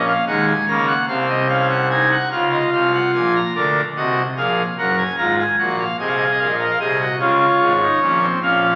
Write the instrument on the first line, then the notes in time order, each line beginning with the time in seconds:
pipe organ
Already playing: A#1 A#2 C#4
0.07 F5
0.27 D#2 D#3 G#3 F#5
0.47 G#5
0.67 C#2 C#3 A#3 A#5
0.87 F#5
1.08 C2 C3 C4 F5
1.29 D#5
1.49 C#4 F5
1.70 F#5
1.90 D#4 G#5
2.11 F#5
2.32 C#2 C#3 F4 F5
2.52 D#5
2.72 C2 C3 F5
2.94 F#5
3.14 A#1 A#2 G#5
3.35 A#5
3.55 D2 D3 A#4 D5
3.96 C2 C3 F#4 D#5
4.37 A#1 A#2 G#4 F5
4.78 F#1 F#2 A#4 F#5
4.98 G#5
5.18 G#1 G#2 F4 A#5
5.39 G#5
5.59 A#1 A#2 F#4 F#5
5.79 F5
5.99 C2 C3 G#4 D#5
6.07 F5
6.16 D#5
6.23 F5
6.31 D#5
6.39 A#1 A#2 F5
6.47 D#5
6.55 F5
6.60 A#4 D#5
6.71 F5
6.79 C2 C3 G#4 D#5
7.01 F#4
7.20 C#2 C#3 F4 C#5
7.61 G#1 G#2
7.82 D#4
8.02 A#1 A#2 C#4
8.21 C4
8.42 A#1 A#2 C#4 F5